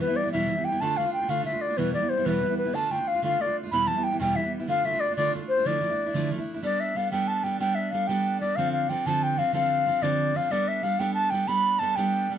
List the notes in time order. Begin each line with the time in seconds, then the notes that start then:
0.00 G3 B3 E4 B4
0.08 E3 G3 B3 E4
0.16 D5
0.23 E3 G3 B3 E4
0.32 E2 B2 E3 G3 B3 E4 E5
0.48 E3 G3 B3 E4
0.56 E3 G3 B3 E4
0.65 G5
0.72 E3 G3 B3 E4
0.81 D3 A3 D4 F4 A5
0.97 D3 A3 D4 F4 F5
1.05 A3 D4 F4
1.13 G5
1.21 A3 D4 F4
1.28 D3 A3 D4 F4 F5
1.44 D3 D4 F4 E5
1.52 A3 D4 F4
1.61 D5
1.68 A3 D4 F4
1.77 E2 B2 E3 G3 B3 E4 B4
1.93 E3 G3 B3 E4 D5
2.01 E3 G3 B3 E4
2.09 C5
2.17 E3 G3 B3 E4
2.25 E2 B2 E3 G3 B3 E4 B4
2.41 E3 G3 B3 E4
2.49 E3 G3 B3 E4
2.58 B4
2.65 E3 G3 B3 E4
2.73 D3 A3 D4 F4 A5
2.90 D3 A3 D4 F4 G5
2.98 A3 D4 F4
3.08 F5
3.15 A3 D4 F4
3.22 D3 A3 D4 F4 F5
3.38 D3 A3 D4 F4 D5
3.46 A3 D4 F4
3.63 A3 D4 F4
3.72 E2 B2 E3 G3 B3 E4 B5
3.87 E3 G3 B3 A5
3.96 E3 G3 B3 E4
4.04 G5
4.12 E3 G3 B3 E4
4.20 E2 B2 E3 G3 B3 E4 G5
4.36 E3 G3 B3 E4 E5
4.44 E3 G3 B3 E4
4.59 E3 G3 B3 E4
4.67 D3 A3 D4 F4 F5
4.84 D3 A3 D4 F4 E5
4.93 A3 D4 F4
5.00 D5
5.09 A3 D4 F4
5.16 D3 A3 D4 F4 D5
5.33 D3 A3 D4 F4
5.41 A3 D4 F4
5.48 C5
5.57 A3 D4 F4
5.65 D3 F3 A3 D4 E4 D5
5.81 F3 A3 D4 E4
5.89 A3 D4 E4
6.06 A3 D4 E4
6.14 D3 F3 A3 D4 E4
6.31 F3 A3 D4 E4
6.38 A3 D4 E4
6.54 A3 D4 E4
6.63 G3 B3 D4 A4 D5
6.80 E5
6.95 G3 B3 D4 A4 F5
7.12 G3 B3 D4 A4 G5
7.28 A5
7.43 G3 B3 D4 A4 G5
7.60 G3 B3 D4 A4 G5
7.75 E5
7.91 G3 B3 D4 A4 F5
8.07 G3 B3 D4 A4 G5
8.41 G3 B3 D4 A4 D5
8.56 D3 F3 C4 D4 A4 F5
8.72 F5
8.89 F3 C4 D4 A4 G5
9.06 D3 F3 C4 D4 A4 A5
9.23 G5
9.37 F3 C4 D4 A4 F5
9.53 D3 F3 C4 D4 A4 F5
9.86 F3 C4 D4 A4
10.02 D3 F3 C4 D4 A4 D5
10.34 F3 C4 D4 A4 F5
10.50 G3 B3 D4 A4 D5
10.68 E5
10.82 G3 B3 D4 A4 F5
10.99 G3 B3 D4 A4 G5
11.14 A5
11.30 G3 B3 D4 A4 G5
11.47 G3 B3 D4 A4 B5
11.79 G3 B3 D4 A4 A5
11.96 G3 B3 D4 A4 G5
12.30 G3 B3 D4 A4